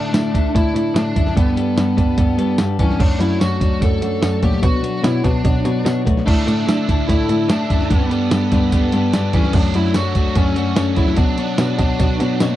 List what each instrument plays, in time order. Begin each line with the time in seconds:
Already playing: clean electric guitar A2 D3 D4 E4 A4, cello A2, lead electric guitar D4
0.12 clean electric guitar A2 D3 D4 E4 A4, cello A2, snare, closed hi-hat, tambourine
0.33 clean electric guitar A2 D3 D4 E4 A4, kick, closed hi-hat
0.53 clean electric guitar A2 D3 D4 E4 A4, cello A2, kick, closed hi-hat
0.74 clean electric guitar A2 D3 D4 E4 A4, cello A2, closed hi-hat
0.95 clean electric guitar A2 D3 D4 E4 A4, cello A2, snare, closed hi-hat, tambourine
1.15 cello F#2, clean electric guitar A2 D3 D4 E4 A4, kick, closed hi-hat
1.27 snare
1.36 cello G2, clean electric guitar G3 B3 D4 A4, kick, closed hi-hat
1.56 clean electric guitar G3 B3 D4 A4, closed hi-hat
1.77 cello G2, clean electric guitar G3 B3 D4 A4, snare, closed hi-hat, tambourine
1.96 cello G2, clean electric guitar G3 B3 D4 A4, kick, closed hi-hat
2.18 cello G2, clean electric guitar G3 B3 D4 A4, kick, closed hi-hat
2.38 cello G2, clean electric guitar G3 B3 D4 A4, closed hi-hat
2.58 cello G2, clean electric guitar G3 B3 D4 A4, snare, closed hi-hat, tambourine
2.79 cello E3, clean electric guitar G3 B3 D4 A4, lead electric guitar C#4, kick, closed hi-hat
2.90 snare
2.99 cello F#2, clean electric guitar F#3 A3 D4 F#4 C#5, kick, crash
3.19 cello F#2, clean electric guitar F#3 A3 D4 F#4 C#5, lead electric guitar E4, closed hi-hat
3.40 cello F#2, clean electric guitar F#3 A3 D4 F#4 C#5, snare, closed hi-hat, tambourine
3.60 clean electric guitar F#3 A3 D4 F#4 C#5, kick, closed hi-hat
3.81 cello F#2, clean electric guitar F#3 A3 D4 F#4 C#5, lead electric guitar A4, kick, closed hi-hat
4.01 cello F#2, clean electric guitar F#3 A3 D4 F#4 C#5, closed hi-hat
4.21 cello F#2, clean electric guitar F#3 A3 D4 F#4 C#5, snare, closed hi-hat, tambourine
4.42 cello A#2, clean electric guitar F#3 A3 D4 F#4 C#5, lead electric guitar G4, kick, closed hi-hat
4.53 snare
4.62 clean electric guitar B2 F#3 B3 D4 F#4 C#5, cello B2, kick, closed hi-hat
4.82 clean electric guitar B2 F#3 B3 D4 F#4 C#5, closed hi-hat
5.02 clean electric guitar B2 F#3 B3 D4 F#4 C#5, cello B2, lead electric guitar E4, snare, closed hi-hat, tambourine
5.23 clean electric guitar B2 F#3 B3 D4 F#4 C#5, cello B2, kick, closed hi-hat
5.43 clean electric guitar B2 F#3 B3 D4 F#4 C#5, cello B2, kick, closed hi-hat
5.63 clean electric guitar B2 F#3 B3 D4 F#4 C#5, cello B2, closed hi-hat
5.84 clean electric guitar B2 F#3 B3 D4 F#4 C#5, cello B2, snare, closed hi-hat, tambourine
6.04 clean electric guitar B2 F#3 B3 D4 F#4 C#5, cello A3, kick, closed hi-hat
6.17 snare
6.25 clean electric guitar A2 D3 D4 E4 A4, cello A2, overdriven electric guitar A3, kick, crash
6.45 clean electric guitar A2 D3 D4 E4 A4, cello A2, overdriven electric guitar A3, closed hi-hat
6.66 clean electric guitar A2 D3 D4 E4 A4, cello A2, overdriven electric guitar A3, snare, closed hi-hat, tambourine
6.88 clean electric guitar A2 D3 D4 E4 A4, overdriven electric guitar A3, kick, closed hi-hat
7.08 clean electric guitar A2 D3 D4 E4 A4, cello A2, overdriven electric guitar A3, kick, closed hi-hat
7.29 clean electric guitar A2 D3 D4 E4 A4, cello A2, overdriven electric guitar A3, closed hi-hat
7.49 cello A2, clean electric guitar A2 D3 D4 E4 A4, overdriven electric guitar A3, snare, closed hi-hat, tambourine
7.70 cello F#2, clean electric guitar A2 D3 D4 E4 A4, overdriven electric guitar A3, kick, closed hi-hat
7.81 snare
7.90 overdriven electric guitar G2 D3 G4, cello G2, clean electric guitar G3 B3 D4 A4, kick, closed hi-hat
8.10 overdriven electric guitar G2 D3 G4, clean electric guitar G3 B3 D4 A4, closed hi-hat
8.31 overdriven electric guitar G2 D3 G4, cello G2, clean electric guitar G3 B3 D4 A4, snare, closed hi-hat, tambourine
8.50 overdriven electric guitar G2 D3 G4, cello G2, clean electric guitar G3 B3 D4 A4, kick, closed hi-hat
8.71 overdriven electric guitar G2 D3 G4, cello G2, clean electric guitar G3 B3 D4 A4, kick, closed hi-hat
8.92 overdriven electric guitar G2 D3 G4, cello G2, clean electric guitar G3 B3 D4 A4, closed hi-hat
9.13 overdriven electric guitar G2 D3 G4, cello G2, clean electric guitar G3 B3 D4 A4, snare, closed hi-hat, tambourine
9.33 overdriven electric guitar G2 D3 G4, cello E3, clean electric guitar G3 B3 D4 A4, lead electric guitar C#4, kick, closed hi-hat
9.44 snare
9.53 cello F#2, clean electric guitar F#3 A3 D4 F#4 C#5, kick, crash
9.74 cello F#2, clean electric guitar F#3 A3 D4 F#4 C#5, lead electric guitar E4, closed hi-hat
9.94 cello F#2, clean electric guitar F#3 A3 D4 F#4 C#5, snare, closed hi-hat, tambourine
10.15 clean electric guitar F#3 A3 D4 F#4 C#5, kick, closed hi-hat
10.35 cello F#2, clean electric guitar F#3 A3 D4 F#4 C#5, lead electric guitar C#4, kick, closed hi-hat
10.56 cello F#2, clean electric guitar F#3 A3 D4 F#4 C#5, closed hi-hat
10.76 cello F#2, clean electric guitar F#3 A3 D4 F#4 C#5, snare, closed hi-hat, tambourine
10.96 cello C#3, clean electric guitar F#3 A3 D4 F#4 C#5, lead electric guitar E4, kick, closed hi-hat
11.07 snare
11.17 cello B2, clean electric guitar B2 F#3 B3 D4 F#4 C#5, kick, closed hi-hat
11.38 clean electric guitar B2 F#3 B3 D4 F#4 C#5, closed hi-hat
11.58 cello B2, clean electric guitar B2 F#3 B3 D4 F#4 C#5, snare, closed hi-hat, tambourine
11.79 clean electric guitar B2 F#3 B3 D4 F#4 C#5, cello B2, kick, closed hi-hat
12.00 clean electric guitar B2 F#3 B3 D4 F#4 C#5, cello B2, kick, closed hi-hat
12.20 cello B2, clean electric guitar B2 F#3 B3 D4 F#4 C#5, closed hi-hat
12.40 clean electric guitar B2 F#3 B3 D4 F#4 C#5, cello B2, snare, closed hi-hat, tambourine